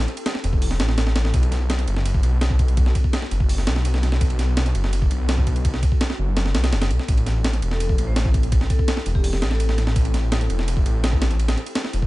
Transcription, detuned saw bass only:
0.44 E1
0.80 A1
0.98 A1
1.34 B1
1.88 F#1
2.24 B1
3.31 F#1
3.67 B1
4.21 B1
4.75 F#1
5.11 B1
6.19 F#1
6.55 B1
6.73 F#1
6.91 B1
7.09 A1
7.63 E1
7.98 A1
9.06 E1
9.42 A1
9.96 A1
10.50 E1
10.86 A1
11.94 E1

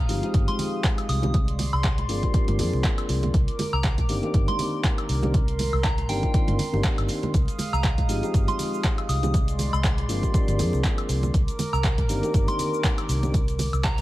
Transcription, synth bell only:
0.48 C6
1.09 D#6
1.73 C6
3.73 A#5
4.48 C6
5.84 A#5
6.09 G5
7.73 A#5
8.48 C6
9.09 D#6
9.73 C6
11.73 A#5
12.48 C6
13.84 A#5

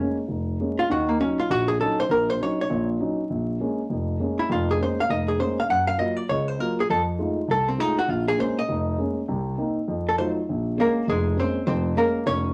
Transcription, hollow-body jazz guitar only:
Already playing: C#4 C#5
0.79 F4
0.91 F#4
1.09 A#3
1.21 C#4
1.39 F4
1.51 F#4
1.68 G#4
1.81 A4
2.00 C5
2.11 A#4
2.30 C5
2.43 C#5
2.61 C#5
4.39 E4
4.52 F4
4.71 G#4
4.83 C5
5.00 F5
5.10 D#5
5.28 G#4
5.40 C5
5.60 F5
5.70 F#5
5.87 F5
5.99 D#5
6.16 D5
6.29 C#5
6.48 C5
6.60 A#4
6.80 G#4
6.90 A4
7.51 A4
7.68 C4
7.80 D#4
7.99 F#4
8.11 F4
8.28 G#4
8.40 C5
8.59 D#5
10.09 A4
10.18 C5
10.80 A#3 A#4
11.09 G#3 G#4
11.40 C4 C5
11.67 C4 C5
11.97 A#3 A#4
12.27 C#4 C#5

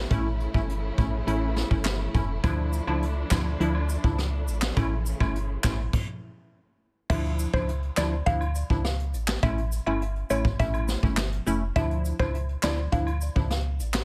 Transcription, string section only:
Already playing: A3 E4
0.10 C#3 E3
2.44 F3 D4
4.77 C#3 E3

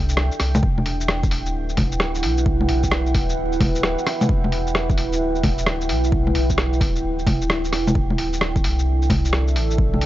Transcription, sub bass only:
Already playing: C2
0.40 C2
0.63 E1
1.32 D1
2.23 B1
2.69 B1
3.15 D1
4.29 E1
4.98 D1
5.90 B1
6.35 B1
6.81 D1
7.04 D1
7.73 E1
7.95 D1
8.64 C2
9.56 A1
10.01 A1

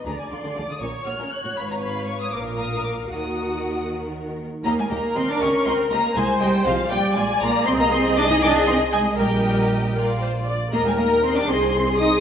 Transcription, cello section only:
0.06 D3
0.31 D3
0.44 D3
0.56 D3
0.69 D3
0.81 A#2
1.07 A#2
1.19 A#2
1.44 A#2
1.57 G#2
2.32 A#2
3.09 D#3
4.65 A#3
4.78 G#3
4.90 A#3
5.15 C4
5.28 D4
5.41 C#4
5.66 C4
5.91 A#3
6.15 G#3
6.41 G3
6.65 F3
6.91 G3
7.15 G#3
7.41 A#3
7.66 C4
7.79 A#3
7.91 C4
8.16 D4
8.29 D#4
8.42 D4
8.67 C4
8.93 G#3
9.19 G3
10.72 A#3
10.85 G#3
10.98 A#3
11.24 C4
11.36 D4
11.49 C4
12.00 D#4

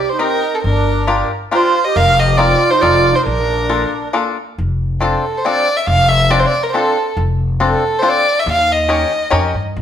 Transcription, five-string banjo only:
0.19 C4 D#4 G4 A#4
1.07 D4 F4 G4 A#4
1.51 D4 F4 G4 A#4
2.38 C4 D#4 F4 A#4
2.82 C4 D#4 F4 A4
3.69 A#3 D4 F4 A4
4.13 A#3 D4 F4 A4
5.00 C4 D4 F4 A4 C5
5.45 C4 D4 F4 A4 C5
6.30 C4 D4 F4 A4 C5
6.74 C4 D4 F4 A4 C5
7.60 C4 D4 F4 A4 C5
8.02 C4 D4 F4 A4 C5
8.89 C#4 D#4 G4 A#4 C#5
9.30 C#4 D#4 G4 A#4 C#5

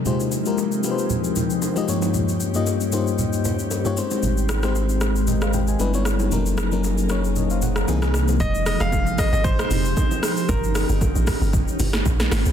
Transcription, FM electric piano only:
0.06 G#3 D#4 F4 G4 C5
0.46 G#3 D#4 F4 G4 A#4
0.84 G#3 D#4 F4 G4 B4
0.91 C5
1.76 G#3 D#4 F4 G4 D#5
1.88 G2 A#3 D#4 F4 G4 C#5
2.55 G2 A#3 D#4 F4 G4 D#5
2.92 G2 A#3 D#4 F4 G4 C5
3.85 G2 A#3 D#4 F4 G4 C#5
3.97 G#3 C4 D#4 G4 C5
4.63 G#3 C4 D#4 G4 C5
5.28 A#4 D#5
5.42 C5 F5
5.54 C5 G5
5.68 D#5 G#5
5.79 G3 B3 D4 E4 B4
5.94 G3 B3 D4 E4 C#5
6.32 F#3 A#3 C#4 D#4 A#4
6.72 F#3 A#3 C#4 D#4 A#4
7.10 F#3 A#3 C#4 D#4 C#5
7.36 A#4 D#5
7.51 C5 F5
7.63 C#5 F#5
7.77 F5 A#5
7.88 E3 A#3 C4 D#4 G#4
8.02 E3 A#3 C4 D#4 G#4

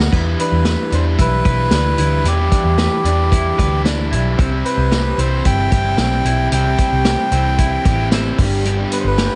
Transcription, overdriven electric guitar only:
0.12 E2 B2 E3 G3 D4 E4
0.24 E3 G3 D4 E4
0.91 E3 G3 D4 E4
1.44 E3 G3 D4 E4
1.71 E3 G3 D4 E4
1.98 E3 G3 D4 E4
2.25 E2 B2 E3 G3 D4 E4
2.38 E3 G3 D4 E4
3.04 E3 G3 D4 E4
3.57 E3 G3 D4 E4
3.84 E3 G3 D4 E4
4.12 E3 G3 D4 E4
4.37 C3 E3 G3 C4 E4
4.51 G3 C4 E4
5.17 E3 G3 C4 E4
5.70 E3 G3 C4 E4
5.98 E3 G3 C4 E4
6.24 E3 G3 C4 E4
6.51 C3 E3 G3 C4 E4
6.64 G3 C4 E4
7.31 E3 G3 C4 E4
7.84 E3 G3 C4 E4
8.10 E3 G3 C4 E4
8.37 G3 B3 D4 G4
8.65 G2 D3 G3 B3 D4 G4
8.77 G3 B3 D4 G4

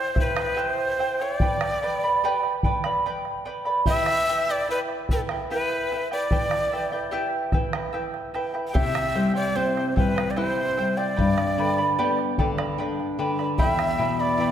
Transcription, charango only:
Already playing: E4 C5 E5 G5
0.15 E4 C5 E5 G5
0.36 E4 C5 G5
0.56 E4 G4 C5 E5 G5
0.99 E4 C5 E5 G5
1.21 E4 C5 G5
1.41 B4 D5 G5 B5
1.82 B4 D5 G5 B5
2.04 B4 D5 B5
2.24 G4 B4 D5 G5 B5
2.64 B4 D5 G5 B5
2.85 B4 D5 B5
3.06 B4 D5 G5 B5
3.45 B4 D5 G5 B5
3.65 B4 D5 B5
3.86 E4 G4 B4 E5 G5
4.28 E4 B4 E5 G5
4.49 E4 B4 G5
4.69 E4 B4 E5 G5
5.11 E4 B4 E5 G5
5.31 E4 B4 G5
5.50 E4 G4 B4 E5 G5
5.91 E4 B4 E5 G5
6.12 E4 B4 G5
6.31 E4 B4 E5 G5
6.72 E4 B4 E5 G5
6.92 E4 B4 G5
7.11 E4 G4 B4 E5 G5
7.53 E4 B4 E5 G5
7.74 E4 B4 G5
7.93 E4 B4 E5 G5
8.34 E4 B4 E5 G5
8.54 E4 B4 G5
8.73 E4 G4 C5 E5 G5
9.14 E4 C5 E5 G5
9.34 E4 C5 G5
9.54 E4 C5 E5 G5
9.96 E4 C5 E5 G5
10.16 E4 C5 G5
10.36 E4 G4 C5 E5 G5
10.77 E4 C5 E5 G5
10.97 E4 C5 G5
11.16 B4 D5 G5 B5
11.58 B4 D5 G5 B5
11.78 B4 D5 B5
11.98 G4 B4 D5 G5 B5
12.39 B4 D5 G5 B5
12.58 B4 D5 B5
12.78 B4 D5 G5 B5
13.19 B4 D5 G5 B5
13.39 B4 D5 B5
13.58 E4 G4 E5 G5 B5
13.98 E4 E5 G5 B5
14.20 E4 E5 B5
14.40 E4 E5 G5 B5

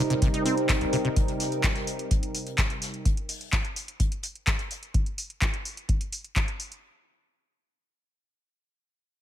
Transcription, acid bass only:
0.10 C3
0.22 C3
0.34 D#4
0.46 C4
0.69 C3
0.81 C2
0.93 C3
1.05 C3

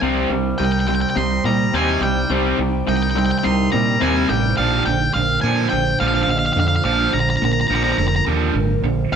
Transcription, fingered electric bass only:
0.02 C2
0.30 C2
0.60 C2
1.16 C2
1.44 A#2
1.74 D#2
2.01 C2
2.30 C2
2.59 C2
2.88 C2
3.45 C2
3.74 A#2
4.02 D#2
4.30 A1
4.59 A#1
4.86 A#1
5.15 A#1
5.43 A#2
5.72 A#1
6.01 A#1
6.27 A#1
6.56 F2
6.85 A#1
7.14 A#1
7.42 A#1
7.70 A#1
7.98 F1
8.27 D#2
8.54 G#1
8.83 A#1
9.12 C2

